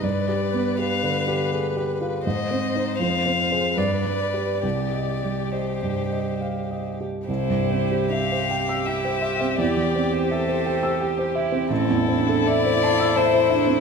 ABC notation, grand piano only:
X:1
M:3/4
L:1/16
Q:1/4=81
K:Cm
V:1 name="Grand piano"
(3G,,2 G2 =B,2 (3G2 D,2 G2 (3A2 G2 F2 | (3A,,2 C2 [Ec]2 (3F,,2 C2 [Ac]2 (3G,,2 G,2 [G=B]2 | (3C,,2 e2 G,2 (3e2 G,,2 e2 (3f2 e2 G2 | [K:C] C,, G,, C G e c g e' g c e C |
E,, E, C G e c g e' g c e C | A,,, E,, C A e c a e' a c e C |]